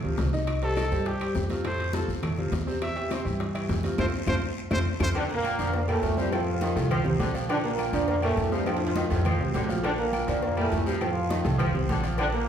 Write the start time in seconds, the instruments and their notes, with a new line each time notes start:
0.04 upright bass D2, upright piano C3 C4 F4, high conga
0.18 upright bass C2, high bongo, low bongo, high conga, high timbale, low timbale, short guiro
0.33 upright piano D#3 D#4 D#5, high bongo, short guiro
0.47 high bongo, high conga, high timbale, long guiro, claves
0.62 upright piano G3 G4 C5, trumpet A4, high conga, high timbale
0.76 upright piano D#3 D#4 D#5, high bongo, high conga, high timbale, short guiro, claves
0.91 upright bass G2, upright piano G3 G4 C5, high conga, short guiro
1.05 trumpet G4, high bongo, high conga, high timbale, long guiro
1.20 upright piano G3 G4 C5, high conga, high timbale, claves
1.35 upright bass F2, high bongo, low bongo, high conga, short guiro
1.49 upright piano C3 C4 F4, high conga, high timbale, short guiro
1.64 upright piano A2 A3 A4, trumpet C5, high bongo, high conga, high timbale, long guiro, claves
1.79 high bongo, high conga, high timbale
1.93 upright piano C3 C4 F4, trumpet A4, high bongo, high conga, high timbale, short guiro
2.08 upright bass F2, high bongo, high conga, short guiro
2.23 upright piano A2 A3 A4, high bongo, high conga, low conga, high timbale, long guiro, claves
2.38 upright piano C3 C4 F4, high conga, low conga
2.52 upright bass E2, high bongo, low bongo, high conga, high timbale, short guiro
2.67 upright piano C3 C4 C5, high bongo, short guiro
2.81 trumpet E5, high bongo, high conga, high timbale, long guiro, claves
2.96 upright piano E3 E4 G4, high conga, high timbale
3.10 upright piano C3 C4 C5, trumpet C5, high bongo, high conga, high timbale, short guiro, claves
3.24 upright bass G2, upright piano E3 E4 G4, high conga, short guiro
3.40 high bongo, high conga, high timbale, long guiro
3.54 upright piano E3 E4 G4, high conga, high timbale, claves
3.69 upright bass F2, high bongo, low bongo, high conga, low timbale, short guiro
3.83 upright piano C3 C4 F4, high conga, high timbale, short guiro
3.98 upright bass F2, upright piano A3 C4 F4, trumpet C5, high bongo, high conga, high timbale, long guiro, claves
4.27 upright bass F2, upright piano A3 C4 F4, trumpet C5, high bongo, high conga, high timbale, long guiro, claves
4.71 upright bass F2, upright piano A3 C4 F4, trumpet C5, high bongo, high conga, high timbale, long guiro, claves
5.00 upright bass F2, upright piano A3 C4 F4, trumpet C5, high bongo, high conga, high timbale, long guiro, claves
5.15 saxophone section D3, trombone section D3 D4, cowbell, high conga, low agogo, long guiro, claves
5.29 trombone section A#2, upright piano A#3 A#4 A#5, high conga, low agogo
5.34 trombone section A#3
5.44 cowbell, high conga, low agogo, short guiro, claves
5.59 upright bass F2, upright piano D3 D4 D5, saxophone section F3, cowbell, high conga, low agogo, short guiro
5.73 trombone section A#2 A#3, cowbell, high conga, long guiro
5.88 trombone section A2 A3, upright piano A#2 A#3 A#4, saxophone section G3, high conga, low agogo, claves
6.03 upright bass F2, cowbell, high conga, low timbale, low agogo, short guiro
6.17 trombone section G2 G3, upright piano C3 C4 C5, saxophone section F3, high conga, short guiro
6.32 upright piano A2 A3 A4, trombone section F3 F4, cowbell, high conga, low agogo, long guiro, claves
6.47 high conga
6.61 upright piano D#3 D#4 D#5, saxophone section D#3, cowbell, high conga, low agogo, short guiro
6.76 upright bass C2, upright piano A2 A3 A4, cowbell, high conga, low agogo, short guiro
6.91 saxophone section F3, cowbell, high conga, low conga, low agogo, long guiro, claves
7.04 upright bass C2, upright piano C3 C4 C5, high conga, low conga
7.20 upright bass A#1, saxophone section D3, cowbell, high conga, low timbale, low agogo, short guiro
7.34 upright piano F3 F4 F5, cowbell, high conga, low agogo, short guiro
7.49 saxophone section D3, trombone section D3 D4, cowbell, high conga, low agogo, long guiro, claves
7.64 trombone section A#2 A#3, upright piano A#3 A#4 A#5, high conga, low agogo
7.78 cowbell, high conga, low agogo, short guiro, claves
7.93 upright bass F2, upright piano D3 D4 D5, saxophone section F3, cowbell, low agogo, short guiro
8.08 trombone section A#2 A#3, cowbell, high conga, long guiro
8.22 trombone section A2 A3, upright piano A#2 A#3 A#4, saxophone section G3, high conga, low agogo, claves
8.37 upright bass F2, cowbell, high conga, low timbale, low agogo, short guiro
8.52 trombone section G2 G3, upright piano C3 C4 C5, saxophone section F3, high conga, short guiro
8.66 upright piano A2 A3 A4, trombone section F3 F4, cowbell, high conga, high timbale, low agogo, long guiro, claves
8.77 high conga, high timbale
8.87 high timbale
8.95 upright piano D#3 D#4 D#5, saxophone section D#3, cowbell, high conga, low timbale, low agogo, short guiro
9.10 upright bass F2, upright piano A2 A3 A4, cowbell, high conga, low agogo, short guiro
9.15 low timbale
9.25 saxophone section F3, cowbell, high conga, low conga, low timbale, low agogo, long guiro, claves
9.40 upright bass C2, upright piano C3 C4 C5, high conga
9.45 low timbale
9.54 upright bass A#1, saxophone section D3, cowbell, high conga, low timbale, low agogo, short guiro
9.64 low timbale
9.69 upright piano F3 F4 F5, cowbell, high conga, low agogo, short guiro
9.73 low timbale
9.84 saxophone section D3, trombone section D3 D4, cowbell, high conga, low agogo, long guiro, claves
9.98 trombone section A#2 A#3, upright piano A#3 A#4 A#5, high conga, low agogo
10.13 cowbell, high conga, low agogo, short guiro, claves
10.27 upright bass F2, upright piano D3 D4 D5, saxophone section F3, cowbell, high conga, low agogo, short guiro
10.42 trombone section A#2 A#3, cowbell, high conga, long guiro
10.57 trombone section A2 A3, upright piano A#2 A#3 A#4, saxophone section G3, high conga, low agogo, claves
10.72 upright bass F2, cowbell, high conga, low timbale, low agogo, short guiro
10.86 trombone section G2 G3, upright piano C3 C4 C5, saxophone section F3, high conga, short guiro
11.01 upright piano A2 A3 A4, trombone section F3 F4, cowbell, high conga, low agogo, long guiro, claves
11.16 high conga
11.30 upright piano D#3 D#4 D#5, saxophone section D#3, cowbell, high conga, low agogo, short guiro
11.45 upright bass C2, upright piano A2 A3 A4, cowbell, high conga, low agogo, short guiro
11.58 saxophone section F3, cowbell, high conga, low conga, low agogo, long guiro, claves
11.74 upright bass C2, upright piano C3 C4 C5, high conga, low conga
11.89 upright bass A#1, saxophone section D3, cowbell, high conga, low timbale, low agogo, short guiro
12.03 upright piano F3 F4 F5, cowbell, low agogo, short guiro
12.18 saxophone section D3, trombone section D3 D4, cowbell, high conga, low agogo, long guiro, claves
12.33 trombone section A#2 A#3, upright piano A#3 A#4 A#5, high conga, low agogo